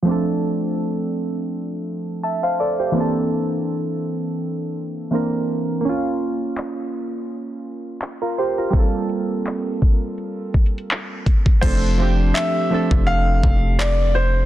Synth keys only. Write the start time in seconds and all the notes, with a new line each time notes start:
0.03 F3 A3
0.07 C4 D4
0.11 A4
2.23 E5 A5
2.43 C5 F5
2.60 A4 D5
2.79 G4 C5
2.92 E3 A#3
2.96 C4 D4
3.00 A4
5.11 E3 A#3 C4 D4
5.15 A#4
5.81 A#3
5.85 C#4
5.89 F4
8.22 F4 A#4
8.38 G4 C5
8.58 F4 A#4
8.70 G3 A#3
8.75 C4 F4
8.79 A4
11.61 F3 A3 C4 D4
11.66 A4
11.98 F3 A3 C4 D4
12.02 G4
12.70 F3 A3 C4 D4
12.74 A4